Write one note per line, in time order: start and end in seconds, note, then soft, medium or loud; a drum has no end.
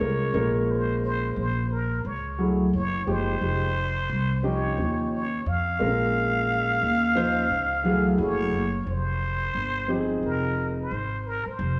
0.00 0.32 C2 medium
0.00 0.32 G#3 medium
0.00 0.33 C#4 medium
0.00 0.33 F4 medium
0.00 0.33 A#4 medium
0.00 0.65 C#5 medium
0.34 1.32 A#1 medium
0.34 1.45 G#3 medium
0.34 1.45 C#4 medium
0.34 1.45 F4 medium
0.34 1.45 A#4 medium
0.65 0.72 C#5 medium
0.71 1.03 C5 medium
1.04 1.35 C5 loud
1.36 2.01 A#1 medium
1.36 1.74 C5 medium
1.72 2.08 A#4 medium
2.05 2.69 C#2 medium
2.05 2.48 C#5 medium
2.39 2.65 F#3 medium
2.39 2.65 A3 medium
2.39 2.65 E4 medium
2.39 2.65 G#4 medium
2.73 3.05 F#1 medium
2.73 3.11 C#5 loud
3.07 3.39 F#1 medium
3.07 3.33 F3 medium
3.07 3.33 G#3 medium
3.07 3.33 D#4 medium
3.07 3.33 G4 medium
3.07 4.47 C5 loud
3.41 4.06 F1 medium
3.41 3.67 F3 medium
3.41 3.67 G#3 medium
3.41 3.68 D#4 medium
3.41 3.68 G4 medium
4.10 4.74 C2 loud
4.43 4.76 F3 medium
4.43 4.76 C#4 medium
4.43 4.77 D#4 medium
4.43 4.77 G4 medium
4.43 5.13 C#5 loud
4.78 5.42 D#2 medium
4.78 5.20 F3 medium
4.78 5.20 C#4 medium
4.78 5.20 D#4 medium
4.78 5.20 G4 medium
5.14 5.49 C#5 loud
5.46 5.78 F2 medium
5.46 8.19 F5 loud
5.79 6.78 A#1 medium
5.79 6.90 G#3 medium
5.79 5.88 C4 medium
5.79 6.90 F4 medium
5.79 6.91 A#4 medium
5.86 6.93 C#4 medium
6.82 7.47 D#2 medium
7.15 7.42 F3 medium
7.15 7.42 C#4 medium
7.15 7.42 D#4 medium
7.15 7.42 C5 loud
7.50 8.15 C#2 medium
7.84 8.27 E3 medium
7.84 8.17 F#3 medium
7.84 8.17 A3 medium
7.84 8.18 G#4 medium
8.18 8.51 F#1 medium
8.18 8.61 F#3 medium
8.18 8.61 A3 medium
8.18 8.61 E4 medium
8.18 8.61 G#4 medium
8.18 8.84 C#5 loud
8.52 8.85 F#1 medium
8.87 9.51 F1 medium
8.87 10.08 C5 loud
9.55 10.19 G1 medium
9.88 10.85 F3 medium
9.88 10.86 C4 medium
9.88 10.86 D#4 medium
9.88 9.97 G4 medium
9.96 10.89 G#4 medium
10.23 10.88 F1 medium
10.23 10.75 A#4 medium
10.81 11.29 C5 medium
10.91 11.43 G#1 medium
11.27 11.50 A#4 medium
11.46 11.80 C5 medium
11.46 muted upright bass stroke soft
11.59 11.80 F1 loud